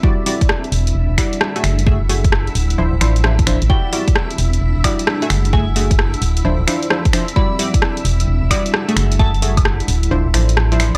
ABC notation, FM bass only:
X:1
M:4/4
L:1/16
Q:"Swing 16ths" 1/4=131
K:D
V:1 name="FM bass" clef=bass
z6 E,,,2 E,,, E,,, z4 F,,,2- | F,,,4- F,,, z D,,,2 D,,, D,,, A,,,4- A,,, A,,, | z6 E,,,2 E,,, E,,, z4 F,,,2- | F,,,4- F,,, z D,,,2 D,,, D,,, z6 |
z6 E,,,2 E,,, E,,, z4 F,,,2- | F,,,4- F,,, z D,,,2 D,,, D,,, A,,,4- A,,, A,,, |]